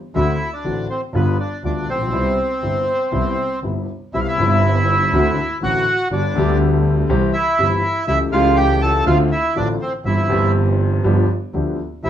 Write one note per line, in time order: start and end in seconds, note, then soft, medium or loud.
0.15 0.36 D2 medium
0.15 0.36 D3 medium
0.15 0.36 A3 medium
0.15 0.36 C4 medium
0.15 0.50 E4 medium
0.15 0.36 F#4 medium
0.15 0.54 E5 loud
0.53 0.88 D4 medium
0.53 0.87 D5 medium
0.64 0.85 A1 medium
0.64 0.86 A1 soft
0.64 0.85 A2 medium
0.64 0.85 D3 soft
0.64 0.86 A3 soft
0.64 0.86 C4 soft
0.64 0.86 F#4 soft
0.90 1.02 C4 medium
0.90 1.01 C5 medium
1.14 1.34 G1 medium
1.14 1.35 G1 medium
1.14 1.35 G2 medium
1.14 1.35 D3 medium
1.14 1.35 G3 medium
1.14 1.35 B3 medium
1.14 1.38 B3 medium
1.14 1.35 F4 medium
1.14 1.38 B4 medium
1.40 1.63 D4 medium
1.40 1.62 D5 medium
1.63 1.84 D2 medium
1.63 1.84 D2 soft
1.63 1.85 D3 soft
1.63 1.84 G3 soft
1.63 1.84 B3 soft
1.63 1.88 D4 medium
1.63 1.85 F4 soft
1.63 1.90 D5 medium
1.88 2.12 A#1 medium
1.88 3.60 C4 medium
1.88 3.59 C5 medium
1.95 2.01 A1 soft
2.00 2.07 A#1 medium
2.06 2.13 B1 medium
2.13 2.34 C2 medium
2.13 2.34 C3 medium
2.13 2.34 G3 medium
2.13 2.34 B3 medium
2.13 2.34 E4 medium
2.62 2.83 G1 medium
2.62 2.84 G1 soft
2.62 2.84 G2 soft
2.62 2.83 C3 soft
2.62 2.84 G3 soft
2.62 2.84 B3 soft
2.62 2.84 E4 soft
3.12 3.33 C2 medium
3.12 3.33 C3 medium
3.12 3.33 G3 medium
3.12 3.33 B3 medium
3.12 3.33 E4 medium
3.63 3.84 G1 soft
3.63 3.84 G2 soft
3.63 3.84 C3 soft
3.63 3.84 G3 soft
3.63 3.84 B3 soft
3.63 3.85 E4 soft
4.13 4.34 C2 medium
4.13 4.34 C3 medium
4.13 4.34 G3 soft
4.13 4.34 B3 soft
4.13 4.20 E4 medium
4.13 4.35 E4 medium
4.13 4.20 E5 medium
4.20 4.27 F5 medium
4.27 5.59 E4 medium
4.27 5.58 E5 medium
4.37 5.09 G1 loud
4.37 5.09 G1 medium
4.37 5.09 G2 medium
4.37 5.08 C3 medium
4.37 5.09 G3 medium
4.37 5.10 B3 medium
4.41 5.11 E4 medium
5.12 5.33 D2 medium
5.12 5.34 D2 medium
5.12 5.34 D3 medium
5.12 5.34 A3 medium
5.12 5.34 C4 medium
5.12 5.34 F#4 medium
5.61 5.82 A1 medium
5.61 5.83 A1 medium
5.61 5.83 A2 medium
5.61 5.83 D3 soft
5.61 5.83 A3 soft
5.61 5.83 C4 soft
5.61 5.83 F#4 medium
5.61 6.08 F#4 medium
5.61 6.09 F#5 loud
6.11 6.32 G1 medium
6.11 6.32 G2 medium
6.11 6.32 D3 soft
6.11 6.32 G3 soft
6.11 6.32 B3 soft
6.11 6.58 D4 medium
6.11 6.32 G4 medium
6.11 6.58 D5 medium
6.35 7.06 D2 loud
6.35 7.06 D2 medium
6.35 7.06 D3 medium
6.35 7.06 G3 medium
6.35 7.06 B3 medium
6.35 7.07 G4 medium
7.09 7.30 C2 medium
7.09 7.30 C2 loud
7.09 7.30 C3 medium
7.09 7.30 E3 medium
7.09 7.30 G3 medium
7.09 7.30 C4 medium
7.09 7.30 G4 medium
7.33 8.04 E4 medium
7.33 8.06 E5 loud
7.59 7.79 G1 medium
7.59 7.80 G1 medium
7.59 7.79 G2 medium
7.59 7.79 E3 medium
7.59 7.79 G3 soft
7.59 7.79 C4 soft
7.59 7.80 G4 medium
8.07 8.28 C#2 medium
8.07 8.28 C#3 medium
8.07 8.28 E3 soft
8.07 8.28 A3 soft
8.07 8.28 C#4 soft
8.07 8.19 E4 medium
8.07 8.29 G4 medium
8.07 8.18 E5 loud
8.31 9.02 C#2 loud
8.31 9.03 C#2 medium
8.31 9.03 C#3 loud
8.31 9.02 E3 medium
8.31 9.02 A3 medium
8.31 9.03 C#4 medium
8.31 8.56 F4 medium
8.31 8.58 F5 loud
8.35 9.04 G4 medium
8.56 8.80 G4 medium
8.56 8.82 G5 loud
8.81 9.05 A4 medium
8.81 9.04 A5 loud
9.06 9.27 D2 loud
9.06 9.27 D2 medium
9.06 9.27 D3 medium
9.06 9.27 A3 medium
9.06 9.27 C4 medium
9.06 9.27 F4 medium
9.06 9.18 F4 medium
9.06 9.18 F5 loud
9.32 9.54 E4 medium
9.32 9.57 E5 medium
9.55 9.77 A1 medium
9.55 9.77 A2 medium
9.55 9.77 D3 medium
9.55 9.77 A3 soft
9.55 9.77 C4 soft
9.55 9.68 D4 medium
9.55 9.77 F4 medium
9.55 9.68 D5 medium
9.81 9.93 C4 medium
9.81 9.92 C5 medium
10.05 10.26 G1 medium
10.05 10.26 G2 medium
10.05 10.26 E3 soft
10.05 10.26 G3 soft
10.05 10.26 C4 soft
10.05 10.52 E4 medium
10.05 10.26 G4 soft
10.05 10.52 E5 medium
10.28 11.00 G1 loud
10.28 11.01 G1 medium
10.28 11.01 G2 medium
10.28 11.00 E3 medium
10.28 11.00 G3 medium
10.28 11.01 C4 medium
10.28 11.02 G4 medium
11.04 11.25 G1 medium
11.04 11.25 G2 medium
11.04 11.25 F3 medium
11.04 11.25 B3 medium
11.04 11.25 D4 medium
11.04 11.25 G4 medium
11.54 11.75 D2 medium
11.54 11.75 D3 medium
11.54 11.75 F3 soft
11.54 11.75 B3 soft
11.54 11.75 D4 soft
11.54 11.75 G4 medium
12.03 12.10 C2 medium
12.03 12.10 C3 medium
12.03 12.10 E3 soft
12.03 12.10 A3 soft
12.03 12.10 C4 soft
12.03 12.10 E4 medium
12.03 12.10 G4 soft
12.03 12.10 E5 medium